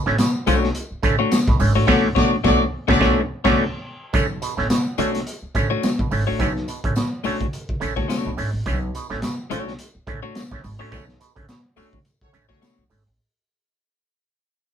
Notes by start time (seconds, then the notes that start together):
0.06 A1 D3 A3 C#4, snare
0.18 B2, snare, closed hi-hat, tambourine, high conga
0.46 B1 D3 A3 C#4 D4 F#4 C#5, closed hi-hat, tambourine, low conga
0.62 A3 C#4, snare
0.75 closed hi-hat, tambourine
0.91 muted upright bass stroke
1.03 A1 D3 A3 C#4, kick, closed hi-hat, tambourine, muted conga
1.19 A3 D4 F#4 C#5
1.31 A3 C#4, snare, closed hi-hat, tambourine, high conga
1.47 B1 B2, kick, snare
1.59 G#1 D3 A3 C#4, open hi-hat, tambourine, high conga
1.75 A1 A3 D4 F#4 C#5, high conga
1.87 B1 D3 A3 C#4 D4 F#4 C#5 D5, kick, snare, crash
2.15 B1 A3 D4 F#4 C#5 D5, kick, snare
2.44 B1 A3 D4 F#4 C#5 D5, kick, snare
2.88 B1 D3 A3 C#4 D4 F#4 C#5 D5, kick, snare
3.00 B1 D3 A3 C#4 D4 F#4 C#5 D5, kick, snare
3.44 B1 D3 A3 C#4 D4 F#4 C#5 D5, kick, snare, crash
4.13 B1 D3 A3 C#4, kick, closed hi-hat, tambourine, muted conga
4.42 B2, closed hi-hat, tambourine
4.57 A1 D3 A3 C#4, snare
4.70 B2, snare, closed hi-hat, tambourine, high conga
4.98 B1 D3 A3 C#4 D4 F#4 C#5, closed hi-hat, tambourine, low conga
5.14 A3 C#4, snare, closed hi-hat
5.27 closed hi-hat, tambourine
5.42 muted upright bass stroke
5.55 A1 D3 A3 C#4, kick, closed hi-hat, tambourine, muted conga
5.70 A3 D4 F#4 C#5
5.83 A3 C#4, snare, closed hi-hat, tambourine, high conga
5.99 B1 B2, kick
6.11 G#1 D3 A3 C#4, open hi-hat, tambourine, high conga
6.27 A1 A3 D4 F#4 C#5
6.39 B1 D3 A3 C#4, kick, closed hi-hat, tambourine, muted conga
6.56 snare
6.68 B2, closed hi-hat, tambourine
6.84 A1 D3 A3 C#4, kick, closed hi-hat
6.96 B2, snare, closed hi-hat, tambourine, high conga
7.24 B1 D3 A3 C#4 D4 F#4 C#5, open hi-hat, tambourine
7.41 kick, closed hi-hat, low conga
7.53 closed hi-hat, tambourine
7.69 muted upright bass stroke, kick
7.80 A1 D3 A3 C#4, closed hi-hat, tambourine, muted conga, low conga
7.96 A3 D4 F#4 C#5, kick, snare
8.08 A3 C#4 D4 F#4 C#5, snare, closed hi-hat, tambourine, high conga
8.25 B1 B2
8.37 G#1 D3 A3 C#4, open hi-hat, tambourine, high conga
8.53 A1
8.66 B1 D3 A3 C#4, kick, closed hi-hat, tambourine, muted conga
8.95 B2, closed hi-hat, tambourine
9.10 A1 D3 A3 C#4, snare
9.22 B2, snare, closed hi-hat, tambourine, high conga
9.50 B1 D3 A3 C#4 D4 F#4 C#5, closed hi-hat, tambourine, low conga
9.67 A3 C#4, snare
9.79 closed hi-hat, tambourine, muted conga
9.95 muted upright bass stroke
10.07 A1 D3 A3 C#4, kick, closed hi-hat, muted conga
10.23 A3 D4 F#4 C#5
10.35 snare, closed hi-hat, tambourine, high conga
10.51 B1 D3 A3 C#4, kick, snare
10.64 G#1 B2, open hi-hat, tambourine, high conga
10.79 A1 D3 A3 C#4 D4 F#4 C#5
10.91 B1 D3 A3 C#4, kick, closed hi-hat, tambourine, muted conga
11.09 snare
11.20 B2, closed hi-hat, tambourine
11.36 A1 D3 A3 C#4, kick, closed hi-hat
11.49 B2, snare, closed hi-hat, tambourine, high conga
11.76 B1 D3 A3 C#4 D4 F#4 C#5, open hi-hat, tambourine
11.92 A3 C#4, kick, low conga
12.05 closed hi-hat, tambourine, muted conga
12.21 A3 C#4 F#4 C#5, muted upright bass stroke, kick
12.33 A1 D3 A3 C#4, closed hi-hat, tambourine, muted conga, low conga
12.49 A3 C#4 D4 F#4 C#5, kick, snare
12.61 B2 A3 D4 F#4 C#5, snare, closed hi-hat, tambourine, high conga
12.78 B1
12.90 G#1 D3 A3 C#4, open hi-hat, tambourine, high conga
13.06 A1 A3 C#4